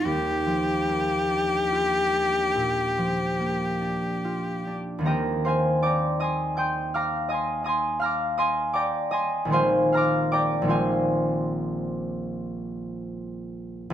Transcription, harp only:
X:1
M:12/8
L:1/8
Q:3/8=52
K:Eb
V:1 name="Harp"
[E,,EF] F, B, D F D B,, F, B, D F D | [Begb] [cfac'] [dgbd'] [eac'e'] [gc'e'g'] [fbd'f'] [eac'e'] [eac'e'] [fbd'f'] [eac'e'] [dgbd'] [eac'e'] | [cfac'] [fbd'f'] [dgbd'] [cfac']8- [cfac'] |]
V:2 name="Harp" clef=bass
z12 | [E,,E,B,CG]12 | [B,,,E,A,CF]3 [B,,,E,A,CF]8- [B,,,E,A,CF] |]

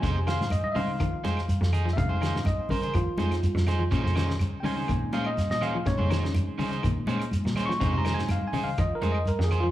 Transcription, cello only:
X:1
M:4/4
L:1/16
Q:1/4=123
K:Bbm
V:1 name="Cello" clef=bass
F,, C, z A,,2 z3 F,2 F,,3 F,, z F,, | F,, C, z A,,2 z3 F,2 F,,3 F,, z F,, | B,, F,, z D,2 z3 B,,2 B,,3 B,, z B,, | B,, F,, z D,2 z3 B,,2 B,,3 B,, z B,, |
F,, C, z A,,2 z3 F,2 F,,3 F,, z F,, |]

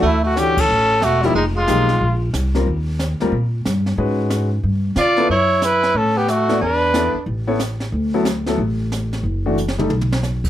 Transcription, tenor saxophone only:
X:1
M:4/4
L:1/8
Q:"Swing" 1/4=182
K:D
V:1 name="Tenor saxophone"
A, A, C C3 A, G, | _A, A,4 z3 | z8 | z6 =F2 |
E2 E2 C B, A,2 | D4 z4 | z8 | z8 |]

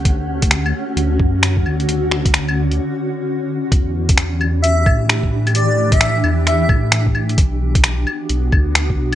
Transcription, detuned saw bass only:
X:1
M:4/4
L:1/8
Q:"Swing 16ths" 1/4=131
K:Edor
V:1 name="Detuned saw bass" clef=bass
D,,3 z D,, F,,2 D,, | D,,4 z4 | E,,4- E,, A,,3- | A,,3 E,,2 A,,3 |
B,,,3 z B,,, D,,2 B,,, |]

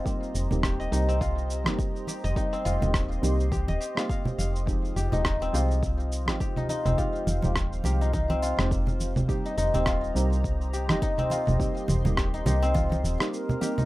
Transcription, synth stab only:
X:1
M:4/4
L:1/16
Q:"Swing 16ths" 1/4=104
K:Cphr
V:1 name="Synth stab"
[G,B,CEG]3 [G,B,CEG]3 [G,B,CEG]2 z3 [G,B,CEG]4- [G,B,CEG] | [G,B,CEG]3 [G,B,CEG]3 [G,B,CEG]2 z3 [G,B,CEG]4- [G,B,CEG] | [F,A,CEG]3 [F,A,CEG]3 [F,A,CEG]2 z3 [F,A,CEG]4- [F,A,CEG] | [F,A,CEG]3 [F,A,CEG]3 [F,A,CEG]2 z3 [F,A,CEG]4- [F,A,CEG] |
[G,B,CEG]3 [G,B,CEG]3 [G,B,CEG]2 z3 [G,B,CEG]4- [G,B,CEG] | [G,B,CEG]3 [G,B,CEG]3 [G,B,CEG]2 z3 [G,B,CEG]3 [G,B,CEG]2 |]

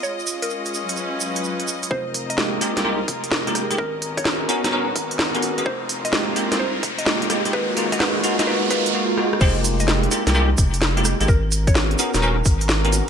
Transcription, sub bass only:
X:1
M:4/4
L:1/16
Q:"Swing 16ths" 1/4=128
K:Fm
V:1 name="Sub bass" clef=bass
z16 | F,,,6 z C,,3 F,,,6 | A,,,6 z E,,,3 A,,,6 | F,,,6 z C,,3 F,,,6 |
A,,,6 z E,,,3 A,,,2 z4 | F,,,6 z C,,3 F,,,4- F,,, A,,, | A,,,6 z E,,,3 A,,,4- A,,, z |]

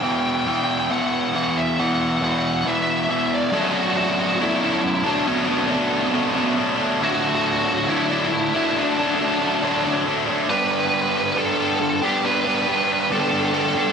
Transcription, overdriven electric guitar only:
X:1
M:4/4
L:1/16
Q:1/4=69
K:Bm
V:1 name="Overdriven electric guitar" clef=bass
[E,,B,,E,]2 [E,,B,,E,]2 [E,,B,,E,]2 [E,,B,,E,]2 [E,,B,,E,]2 [E,,B,,E,]2 [E,,B,,E,]2 [E,,B,,E,]2 | [B,,,F,,B,,F,A,D]4 [B,,,F,,B,,F,A,D] [B,,F,A,D]2 [B,,F,A,D] [B,,F,A,D] [B,,F,A,D] [B,,F,A,D]2 [B,,,F,,B,,F,A,D] [B,,F,A,D] [B,,F,A,D] [B,,F,A,D] | [D,,A,,D,F,A,D]4 [D,,A,,D,F,A,D] [D,F,A,D]2 [D,F,A,D] [D,F,A,D] [D,F,A,D] [D,F,A,D]2 [D,,A,,D,F,A,D] [D,F,A,D] [D,F,A,D] [D,F,A,D] | [G,,D,G,B,DG]4 [G,,D,G,B,DG] [G,B,DG]2 [G,B,DG] [G,B,DG] [G,B,DG] [G,B,DG]2 [G,,D,G,B,DG] [G,B,DG] [G,B,DG] [G,B,DG] |]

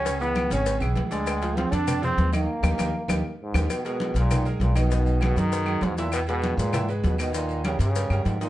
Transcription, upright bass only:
X:1
M:4/4
L:1/8
Q:1/4=198
K:G#m
V:1 name="Upright bass" clef=bass
C,,3 G,,,2 B,,, =D,,2- | =D,,3 ^E,,3 ^D,,2 | z D,, D,, z D,, z2 D,, | z3 B,,,3 B,,,2- |
B,,,3 F,,3 E,,2- | E,,3 G,,3 D,,2- | D,,3 =G,,2 G,, ^G,,2 |]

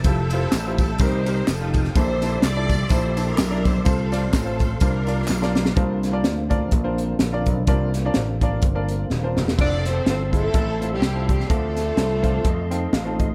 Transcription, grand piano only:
X:1
M:4/4
L:1/16
Q:"Swing" 1/4=126
K:F
V:1 name="Grand piano"
[EFGA] z [EFGc]2 z [EFGc]2 z [C_EGB] z [CEGB]2 z [EFGA]2 z | [DEAc] z [DEAc]2 z [DEAd]2 z [DEAc] z [DEAc]2 z [DEAd]2 z | [CFAc] z [CFAd]2 z [CFAc]2 z [DFBc] z [DFBd]2 z [DFBd]2 z | [DFBc]2 z [DFBd]2 z [DFBd]2 z [DFBc]2 z2 [DFBd]2 z |
[DFBd]2 z [DFBd]2 z [DFBd]2 z [DFBd]2 z2 [DFBc]2 z | [CEFA]2 z2 [CEFA] z [CEFA]2 z2 [CEFc]2 z [CEFA]2 z | [CDFA]2 z2 [CDFc] z [CDFc]2 z2 [C_EFA]2 z [CEFA]2 z |]
V:2 name="Grand piano" clef=bass
z8 C,4 z4 | B,,6 z8 z2 | C,6 z2 C,6 z2 | C,6 z8 z2 |
C,6 z8 z2 | z16 | D,6 a2 a2 g2 f2 _e2 |]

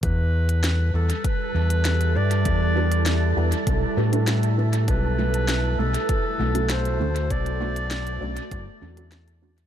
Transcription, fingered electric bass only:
X:1
M:4/4
L:1/8
Q:1/4=99
K:Em
V:1 name="Fingered electric bass" clef=bass
E,,3 E,, z E,,2 G,, | E,,3 E,, B,,, A,,3 | B,,,3 B,,, z B,,,2 D,, | B,,,3 B,,, F,,, E,,3 |]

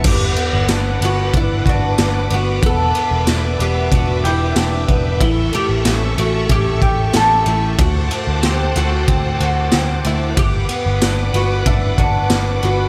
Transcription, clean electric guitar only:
X:1
M:4/4
L:1/8
Q:1/4=93
K:Glyd
V:1 name="Clean electric guitar"
z B, D B, D F D B, | B, B, D B, D G D B, | E, A, C A, C G C A, | z A, =C A, C F C A, |
z B, D B, D F D B, |]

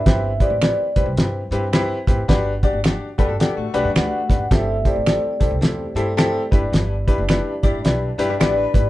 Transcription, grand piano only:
X:1
M:4/4
L:1/8
Q:"Swing" 1/4=108
K:G
V:1 name="Grand piano"
[CEGB] [CEGB] [CEGB] [CEGB] [CEGB] [CEGB] [CEGB] [CEGB] | [DFGB] [DFGd] [DFGd] [DFGA] [DFGA] [DFGB] [DFGB] [DFGB] | [CEGA] [CEGA] [CEGA] [CEGA] [CEGA] [CEGA] [CEGA] [DEGB]- | [DEGB] [DEGB] [DEGB] [DEGd] [DEGB] [DEGB] [DEGB] [DEGB] |]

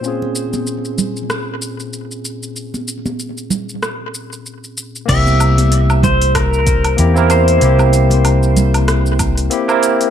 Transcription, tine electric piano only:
X:1
M:4/4
L:1/16
Q:"Swing 16ths" 1/4=95
K:Cphr
V:1 name="Tine electric piano"
[B,,CDFA]16- | [B,,CDFA]16 | [B,C=EG]8- [B,CEG]2 z2 [B,CEG] [B,CEB]3 | [B,C=EG]8- [B,CEG]2 z2 [B,CEG] [B,CEB]3 |]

